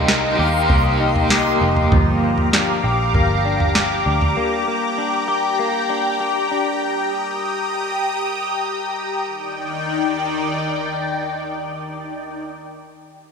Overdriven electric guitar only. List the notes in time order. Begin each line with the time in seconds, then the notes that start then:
Already playing: G4
0.07 G3 A#3
0.11 D#4 G4
0.35 G4
0.43 D#4
0.48 A#3